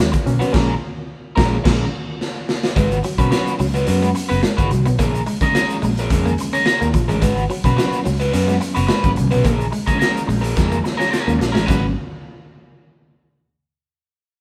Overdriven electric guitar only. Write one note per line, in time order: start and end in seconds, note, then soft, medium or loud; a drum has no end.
0.12 muted overdriven electric guitar stroke medium
0.39 0.51 C#4 medium
0.39 0.53 F#4 medium
0.39 0.53 B4 medium
0.52 0.72 C#4 loud
0.52 0.73 G#4 loud
0.52 0.73 A#4 loud
1.36 1.56 C#4 loud
1.36 1.57 G#4 loud
1.36 1.56 A#4 loud
1.64 1.84 C#4 loud
1.64 1.84 G#4 loud
1.64 1.85 A#4 loud
2.76 2.97 C#4 medium
2.76 2.97 F#4 medium
2.76 2.98 B4 loud
3.03 muted overdriven electric guitar stroke soft
3.18 3.30 C#4 soft
3.18 3.30 F#4 soft
3.18 3.31 B4 medium
3.31 3.53 C#4 medium
3.31 3.53 F#4 medium
3.31 3.53 B4 medium
3.59 muted overdriven electric guitar stroke medium
3.74 3.85 C#4 soft
3.74 3.86 F#4 medium
3.74 3.87 B4 medium
3.86 4.08 C#4 medium
3.86 4.09 F#4 medium
3.86 4.09 B4 loud
4.15 muted overdriven electric guitar stroke soft
4.29 4.40 C#4 medium
4.29 4.41 F#4 medium
4.29 4.42 B4 medium
4.41 muted overdriven electric guitar stroke soft
4.57 4.70 C#4 medium
4.57 4.70 F#4 medium
4.57 4.70 B4 medium
4.71 muted overdriven electric guitar stroke soft
4.86 muted overdriven electric guitar stroke medium
4.99 5.20 C#4 loud
4.99 5.20 G#4 loud
4.99 5.21 A#4 loud
5.26 muted overdriven electric guitar stroke soft
5.42 5.54 C#4 soft
5.42 5.55 G#4 medium
5.42 5.55 A#4 medium
5.55 5.76 C#4 medium
5.55 5.76 G#4 medium
5.55 5.76 A#4 loud
5.83 muted overdriven electric guitar stroke soft
5.99 6.10 C#4 medium
5.99 6.11 G#4 medium
5.99 6.12 A#4 medium
6.11 6.32 C#4 medium
6.11 6.32 G#4 loud
6.11 6.33 A#4 medium
6.41 muted overdriven electric guitar stroke soft
6.53 6.64 C#4 medium
6.53 6.65 G#4 medium
6.53 6.65 A#4 medium
6.65 6.87 C#4 medium
6.65 6.87 G#4 medium
6.65 6.87 A#4 loud
6.94 muted overdriven electric guitar stroke soft
7.08 7.20 C#4 medium
7.08 7.22 G#4 medium
7.08 7.22 A#4 medium
7.21 7.43 C#4 medium
7.21 7.43 F#4 medium
7.21 7.43 B4 loud
7.50 muted overdriven electric guitar stroke soft
7.65 7.75 C#4 soft
7.65 7.76 F#4 medium
7.65 7.77 B4 medium
7.77 7.98 C#4 loud
7.77 7.99 F#4 medium
7.77 7.99 B4 medium
8.05 muted overdriven electric guitar stroke soft
8.20 8.31 C#4 medium
8.20 8.32 F#4 medium
8.20 8.33 B4 medium
8.32 8.54 C#4 medium
8.32 8.54 F#4 loud
8.32 8.54 B4 loud
8.60 muted overdriven electric guitar stroke soft
8.75 8.86 C#4 medium
8.75 8.87 F#4 medium
8.75 8.87 B4 medium
8.87 9.09 C#4 medium
8.87 9.10 F#4 medium
8.87 9.10 B4 loud
9.17 muted overdriven electric guitar stroke soft
9.31 9.42 C#4 medium
9.31 9.44 F#4 medium
9.31 9.44 B4 medium
9.43 9.65 C#4 medium
9.43 9.66 G#4 medium
9.43 9.66 A#4 loud
9.71 muted overdriven electric guitar stroke soft
9.86 9.97 C#4 medium
9.86 9.98 G#4 medium
9.86 9.99 A#4 medium
9.98 10.20 C#4 medium
9.98 10.21 G#4 medium
9.98 10.21 A#4 loud
10.27 muted overdriven electric guitar stroke soft
10.41 10.54 C#4 soft
10.41 10.55 G#4 medium
10.41 10.55 A#4 medium
10.55 10.77 C#4 medium
10.55 10.77 G#4 medium
10.55 10.78 A#4 loud
10.83 muted overdriven electric guitar stroke soft
10.97 11.10 C#4 medium
10.97 11.11 G#4 medium
10.97 11.12 A#4 medium
11.11 11.33 C#4 medium
11.11 11.33 G#4 medium
11.11 11.34 A#4 medium
11.39 muted overdriven electric guitar stroke soft
11.52 11.65 C#4 medium
11.52 11.67 G#4 medium
11.52 11.67 A#4 medium
11.66 11.85 C#4 medium
11.66 11.85 F#4 medium
11.66 11.85 B4 medium